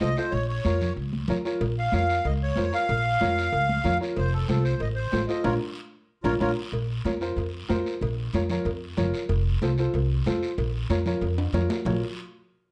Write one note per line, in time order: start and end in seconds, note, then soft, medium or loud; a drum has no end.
0.00 0.13 C2 medium
0.00 0.06 F4 medium
0.00 0.07 A4 medium
0.00 0.07 C5 medium
0.00 0.17 D#5 loud
0.00 high conga medium
0.00 short guiro medium
0.17 0.33 F4 medium
0.17 0.33 A4 medium
0.17 0.33 C5 medium
0.17 0.33 D#5 medium
0.17 short guiro medium
0.31 0.58 A#1 medium
0.31 0.46 C#5 medium
0.31 long guiro medium
0.48 0.93 C#5 medium
0.65 0.90 F2 medium
0.65 0.87 F4 medium
0.65 0.87 A#4 medium
0.65 0.88 C#5 medium
0.65 high conga medium
0.65 short guiro medium
0.81 low conga medium
0.81 short guiro medium
0.96 1.22 C#2 medium
0.96 long guiro medium
1.13 high conga medium
1.28 1.41 F2 medium
1.28 1.34 F4 medium
1.28 1.34 A#4 medium
1.28 1.35 C#5 medium
1.28 high conga medium
1.28 low conga medium
1.28 short guiro medium
1.45 1.62 F4 medium
1.45 1.62 A#4 medium
1.45 1.62 C#5 medium
1.45 short guiro medium
1.61 1.86 A#1 medium
1.61 cowbell loud
1.61 long guiro medium
1.79 1.94 F5 loud
1.92 2.18 F2 medium
1.92 2.15 F4 medium
1.92 2.15 A#4 medium
1.92 2.16 C#5 medium
1.92 2.27 F5 loud
1.92 cowbell medium
1.92 high conga medium
1.92 short guiro medium
2.09 short guiro medium
2.25 2.50 C#2 medium
2.25 2.33 D#5 loud
2.25 cowbell medium
2.25 long guiro medium
2.43 2.75 C#5 loud
2.56 2.70 F2 medium
2.56 2.62 F4 medium
2.56 2.62 A#4 medium
2.56 2.63 C5 medium
2.56 cowbell medium
2.56 high conga medium
2.56 short guiro medium
2.72 2.89 F4 medium
2.72 2.89 A#4 medium
2.72 2.90 C#5 medium
2.72 3.98 F5 loud
2.72 short guiro medium
2.89 3.15 A#1 loud
2.89 cowbell loud
2.89 long guiro medium
3.20 3.46 F2 medium
3.20 3.43 F4 medium
3.20 3.43 A#4 medium
3.20 3.44 C#5 loud
3.20 cowbell medium
3.20 high conga medium
3.20 short guiro medium
3.38 short guiro medium
3.52 3.78 C#2 medium
3.52 cowbell medium
3.52 long guiro medium
3.69 high conga medium
3.84 3.97 F2 medium
3.84 3.90 F4 medium
3.84 3.90 A#4 medium
3.84 3.91 C#5 medium
3.84 cowbell medium
3.84 high conga medium
3.84 low conga medium
3.84 short guiro medium
4.00 4.17 F4 medium
4.00 4.17 A#4 medium
4.00 4.17 C#5 medium
4.00 short guiro medium
4.16 4.43 F1 medium
4.16 4.33 C5 medium
4.16 cowbell loud
4.16 long guiro medium
4.33 4.47 A4 medium
4.48 4.74 C2 medium
4.48 4.71 F4 medium
4.48 4.71 A4 medium
4.48 4.64 A4 medium
4.48 4.72 C5 medium
4.48 cowbell medium
4.48 high conga medium
4.48 short guiro medium
4.64 4.81 C5 loud
4.64 short guiro medium
4.80 5.06 A1 medium
4.80 4.88 D#5 medium
4.80 cowbell medium
4.80 long guiro medium
4.95 5.26 C5 medium
5.12 5.26 A1 medium
5.12 5.18 F4 medium
5.12 5.19 A4 medium
5.12 5.19 C5 medium
5.12 cowbell medium
5.12 high conga medium
5.12 low timbale medium
5.12 short guiro medium
5.27 5.43 F4 medium
5.27 5.45 A4 medium
5.27 5.45 C5 medium
5.27 5.45 D#5 medium
5.27 short guiro medium
5.44 5.57 A#1 loud
5.44 5.55 F4 medium
5.44 5.55 A#4 medium
5.44 5.55 A#4 loud
5.44 5.55 C#5 medium
5.44 5.55 C#5 loud
5.44 high conga medium
5.44 high timbale loud
5.44 long guiro loud
6.23 6.36 A#1 medium
6.23 6.34 F4 loud
6.23 6.35 F4 loud
6.23 6.34 A#4 medium
6.23 6.35 A#4 medium
6.23 6.35 C#5 medium
6.23 6.35 C#5 loud
6.23 high conga medium
6.23 high timbale loud
6.23 long guiro medium
6.40 6.53 A#1 medium
6.40 6.51 F4 medium
6.40 6.51 A#4 medium
6.40 6.51 C#5 medium
6.40 high conga loud
6.40 high timbale medium
6.40 long guiro loud
6.72 6.98 A#1 medium
6.72 cowbell loud
6.72 long guiro medium
7.04 7.31 F2 loud
7.04 7.11 F4 medium
7.04 7.11 A#4 medium
7.04 7.11 C#5 medium
7.04 cowbell medium
7.04 high conga medium
7.04 short guiro medium
7.21 7.38 F4 medium
7.21 7.38 A#4 medium
7.21 7.38 C5 medium
7.21 short guiro medium
7.36 7.63 F2 medium
7.36 cowbell medium
7.36 long guiro medium
7.68 7.82 F2 medium
7.68 7.92 F4 medium
7.68 7.92 A#4 medium
7.68 7.92 C5 loud
7.68 cowbell medium
7.68 high conga medium
7.68 low timbale medium
7.68 short guiro medium
7.86 short guiro medium
8.01 8.27 A#1 medium
8.01 cowbell loud
8.01 long guiro medium
8.33 8.59 F2 medium
8.33 8.40 F4 medium
8.33 8.40 A#4 medium
8.33 8.40 C#5 medium
8.33 cowbell medium
8.33 high conga medium
8.33 short guiro medium
8.49 8.67 F4 medium
8.49 8.67 A#4 medium
8.49 8.67 C#5 medium
8.49 low conga medium
8.49 short guiro medium
8.65 8.91 F2 medium
8.65 cowbell loud
8.65 long guiro medium
8.97 9.10 F#1 loud
8.97 9.20 F4 medium
8.97 9.20 A#4 medium
8.97 9.20 C#5 loud
8.97 cowbell medium
8.97 high conga medium
8.97 low conga medium
8.97 short guiro medium
9.14 short guiro medium
9.29 9.55 F1 loud
9.29 cowbell loud
9.29 long guiro medium
9.62 9.88 C2 medium
9.62 9.68 F4 medium
9.62 9.68 A4 medium
9.62 9.68 C5 medium
9.62 cowbell medium
9.62 high conga medium
9.62 short guiro medium
9.78 9.95 F4 medium
9.78 9.95 A4 medium
9.78 9.95 C5 medium
9.78 short guiro medium
9.94 10.19 C2 loud
9.94 cowbell loud
9.94 long guiro medium
10.26 10.39 F2 medium
10.26 10.49 F4 medium
10.26 10.49 A4 medium
10.26 10.49 C5 medium
10.26 cowbell medium
10.26 high conga medium
10.26 short guiro medium
10.43 short guiro medium
10.58 10.84 A#1 loud
10.58 cowbell loud
10.58 long guiro medium
10.89 11.15 F2 loud
10.89 10.96 F4 medium
10.89 10.96 A#4 medium
10.89 10.96 C#5 loud
10.89 cowbell medium
10.89 high conga medium
10.89 short guiro medium
11.06 11.23 F4 medium
11.06 11.23 A#4 medium
11.06 11.24 C#5 medium
11.06 low conga medium
11.06 short guiro medium
11.21 11.47 F2 loud
11.21 cowbell medium
11.21 long guiro medium
11.38 high timbale loud
11.53 11.66 F2 loud
11.53 11.76 F4 medium
11.53 11.77 A#4 medium
11.53 11.77 C#5 loud
11.53 cowbell medium
11.53 high conga medium
11.53 low conga medium
11.53 low timbale medium
11.53 short guiro medium
11.70 low timbale medium
11.70 short guiro medium
11.85 12.01 A#1 medium
11.85 12.01 F4 medium
11.85 12.01 A#4 medium
11.85 12.01 C#5 medium
11.85 low conga loud
11.85 low timbale loud
11.85 long guiro loud